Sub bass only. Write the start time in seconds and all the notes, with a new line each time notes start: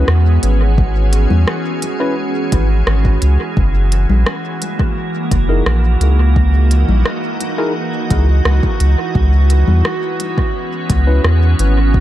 0.08 E2
0.43 G#1
1.30 E2
2.52 G#1
2.87 G#1
3.22 C#2
3.57 F#1
4.09 A#1
5.31 F#1
5.66 A#1
6.01 C#2
6.89 A#1
8.10 C#2
8.45 C#2
8.80 C#2
9.15 C#2
9.68 E2
10.90 C#2
11.24 E2
11.59 G#1